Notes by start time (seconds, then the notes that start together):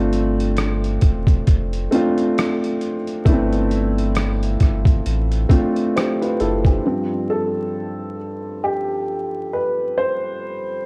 Already playing: G1 A3 C4 D4 F4
0.13 closed hi-hat
0.40 closed hi-hat
0.57 cross-stick, closed hi-hat
0.84 closed hi-hat
1.01 E1, kick, closed hi-hat
1.27 kick, closed hi-hat
1.47 F1, kick, closed hi-hat
1.73 closed hi-hat
1.91 A3 C4 D4 F4, closed hi-hat
2.18 closed hi-hat
2.38 cross-stick, closed hi-hat
2.64 closed hi-hat
2.81 closed hi-hat
3.07 closed hi-hat
3.25 G1 A3 B3 D4 E4, kick, closed hi-hat
3.33 C4
3.53 closed hi-hat
3.71 closed hi-hat
3.98 closed hi-hat
4.15 cross-stick, closed hi-hat
4.43 closed hi-hat
4.60 G1, kick, cross-stick, closed hi-hat
4.85 kick, closed hi-hat
5.06 A1, closed hi-hat
5.32 closed hi-hat
5.49 A3 C4 D4 F4, kick, closed hi-hat
5.76 closed hi-hat
5.96 G4 C5, cross-stick, closed hi-hat
6.21 F4 B4, closed hi-hat
6.40 F#1 E4 A4, closed hi-hat
6.65 D4 G4, kick, closed hi-hat
6.85 G2 F3 C4
7.30 A4
8.64 G4
9.53 B4
9.98 C5